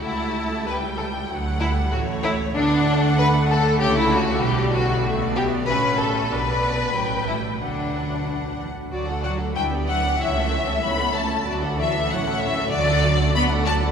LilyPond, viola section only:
\new Staff \with { instrumentName = "Viola section" } { \time 2/4 \key d \major \tempo 4 = 95 a4 g4 | fis8 g8 a4 | b8 a4.~ | a4 g4 |
a8 b8 cis'4 | d'8 b8 fis8 g8 | fis4. r8 | <fis fis'>16 <a d'>16 <fis fis'>16 <a d'>16 <d' e'>16 <b d'>16 <d' e'>16 <b d'>16 |
<cis' e'>16 <a cis'>16 <cis' e'>16 <a cis'>16 <cis' e'>16 <a cis'>16 <cis' e'>16 <a cis'>16 | <fis fis'>16 <a d'>16 <fis fis'>16 <a d'>16 <cis' e'>16 <a cis'>16 <cis' e'>16 <a cis'>16 | <fis fis'>16 <a d'>16 <fis fis'>16 <a d'>16 <fis fis'>16 <a d'>16 <fis fis'>16 <a d'>16 | }